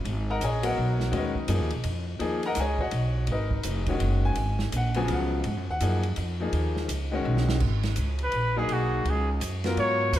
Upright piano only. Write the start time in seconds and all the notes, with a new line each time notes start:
0.30 A#4 D#5 F#5 A#5
0.44 G#4 C#5 D#5 G#5
0.63 F#3 B3 F#4 A#4 C#5 D#5 F#5
1.11 D#3 G#3 C#4 F#4
1.17 D#4 A#4 B4 D#5
1.48 F3 A#3 D#4 G#4
2.19 F3 A#3 D#4 G#4
2.46 A#4 D#5 F#5 A#5
2.59 G#4 C#5 D#5 G#5
2.81 F#4 C#5 D#5 F#5
3.32 D#4 A#4 B4 D#5
3.88 D#3 G#3 C#4 F#4
4.25 G#5
4.77 F#5
4.95 C#3 F3 F#3 B3 G#5
5.13 F#5
5.71 F#5
5.81 F3 A#3 D#4 G#4
6.40 F3 A#3 D#4 G#4
7.11 D#3 G#3 C#4 F#4
8.56 F#3 A#3 D#4 G#4
9.65 F#3 B3 F4 A#4